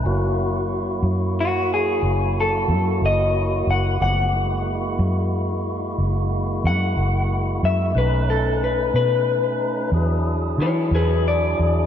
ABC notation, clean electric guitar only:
X:1
M:12/8
L:1/8
Q:3/8=61
K:F#dor
V:1 name="Clean electric guitar"
z4 F G2 A2 d2 f | f4 z4 f3 e | B A B B4 z [Ec] [GB] =d2 |]